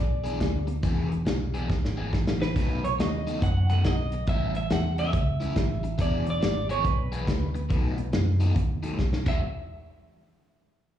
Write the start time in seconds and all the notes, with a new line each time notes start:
Already playing: B1 D5
0.24 E3 B3 D4 G#4, closed hi-hat
0.40 D2, muted overdriven electric guitar stroke, kick, snare, closed hi-hat
0.67 muted overdriven electric guitar stroke, closed hi-hat
0.83 E1 E3 B3 D4 G#4, kick, closed hi-hat
1.11 muted overdriven electric guitar stroke, closed hi-hat
1.26 B1, muted overdriven electric guitar stroke, snare, closed hi-hat
1.54 E3 B3 D4 G#4, closed hi-hat
1.69 G#1, muted overdriven electric guitar stroke, kick, snare
1.85 snare
1.97 E3 B3 D4 G#4
2.12 A1, muted overdriven electric guitar stroke, kick, snare
2.27 snare
2.41 B4, muted overdriven electric guitar stroke, snare
2.56 B1 B2 F#3 A3 D#4, kick, closed hi-hat, splash
2.84 C#5, muted overdriven electric guitar stroke, closed hi-hat
2.99 D#2 D#5, muted overdriven electric guitar stroke, snare, closed hi-hat
3.27 B2 F#3 A3 D#4, closed hi-hat
3.42 F#2 F#5, muted overdriven electric guitar stroke, kick, closed hi-hat
3.69 B2 F#3 A3 D#4 F#5, closed hi-hat
3.84 B1 D#5, muted overdriven electric guitar stroke, kick, snare, closed hi-hat
4.12 muted overdriven electric guitar stroke, closed hi-hat
4.27 A1 A2 G3 C#4 E4 E5, kick, closed hi-hat
4.55 E5, muted overdriven electric guitar stroke, closed hi-hat
4.70 E2 F#5, muted overdriven electric guitar stroke, snare, closed hi-hat
4.98 A2 G3 C#4 E4 E5, closed hi-hat
5.13 C#2, muted overdriven electric guitar stroke, kick, closed hi-hat
5.40 A2 G3 C#4 E4, closed hi-hat
5.55 A1, muted overdriven electric guitar stroke, kick, snare, closed hi-hat
5.83 muted overdriven electric guitar stroke, closed hi-hat
5.98 E1 E3 B3 D4 G#4 D5, kick, closed hi-hat
6.26 D5, muted overdriven electric guitar stroke, closed hi-hat
6.41 G#1, muted overdriven electric guitar stroke, snare, closed hi-hat
6.69 E3 B3 D4 G#4 C#5, closed hi-hat
6.84 B1 B4, muted overdriven electric guitar stroke, kick, closed hi-hat
7.12 E3 B3 D4 G#4, closed hi-hat
7.27 D2, muted overdriven electric guitar stroke, kick, snare, closed hi-hat
7.54 muted overdriven electric guitar stroke, closed hi-hat
7.69 B1 B2 F#3 A3 D#4, kick, closed hi-hat
7.97 muted overdriven electric guitar stroke, closed hi-hat
8.13 F#2, muted overdriven electric guitar stroke, snare, closed hi-hat
8.40 B2 F#3 A3 D#4, closed hi-hat
8.56 D#2, muted overdriven electric guitar stroke, kick, closed hi-hat
8.83 B2 F#3 A3 D#4, closed hi-hat
8.98 B1, muted overdriven electric guitar stroke, kick, snare
9.13 snare
9.26 E1 E3 G#3 D4 F#4 E5, kick, crash